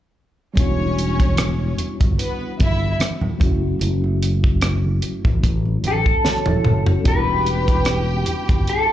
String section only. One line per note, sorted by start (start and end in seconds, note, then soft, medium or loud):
0.57 1.75 C#4 loud
0.57 1.75 C#5 loud
2.19 2.52 B3 medium
2.19 2.52 B4 medium
2.61 2.93 E4 medium
2.61 2.93 E5 loud
7.05 8.92 G4 medium
7.05 8.92 G5 medium